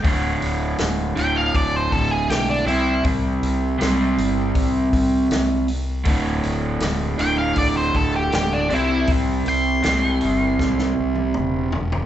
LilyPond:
<<
  \new Staff \with { instrumentName = "Lead electric guitar" } { \time 4/4 \key c \mixolydian \tempo 4 = 80 r4. g''16 f''16 d''16 c''16 a'16 gis'16 g'16 d'16 e'8 | r1 | r4. g''16 f''16 d''16 c''16 a'16 g'16 g'16 d'16 e'8 | r8 c'''2. r8 | }
  \new Staff \with { instrumentName = "Overdriven electric guitar" } { \clef bass \time 4/4 \key c \mixolydian <d, a, d>4. <d, a, d>2 <c g c'>8~ | <c g c'>4 <c g c'>2~ <c g c'>8 r8 | <d, a, d>4. <d, a, d>2 <c g c'>8~ | <c g c'>4 <c g c'>2~ <c g c'>8 r8 | }
  \new Staff \with { instrumentName = "Fingered electric bass" } { \clef bass \time 4/4 \key c \mixolydian d,,8 d,,8 d,,8 d,,8 d,,8 d,,8 b,,8 c,8 | c,8 c,8 c,8 g,,8 c,8 c,8 c,4 | d,,8 d,,8 d,,8 d,,8 d,,8 d,,8 d,,8 c,8 | c,8 c,8 c,8 g,,8 c,8 c,8 e,,4 | }
  \new DrumStaff \with { instrumentName = "Drums" } \drummode { \time 4/4 <hho bd>8 hho8 <hho sn>8 hho8 <hho bd>8 <hho bd>8 <hho sn>8 hho8 | <hho bd>8 hho8 <hho sn>8 hho8 <hho bd>8 <hho bd>8 <hho sn>8 hho8 | <hho bd>8 hho8 <hho sn>8 hho8 <hho bd>8 <hho bd>8 <hho sn>8 hho8 | <hho bd>8 hho8 <hho sn>8 hho8 <bd sn>16 sn8 tommh16 toml8 tomfh16 tomfh16 | }
>>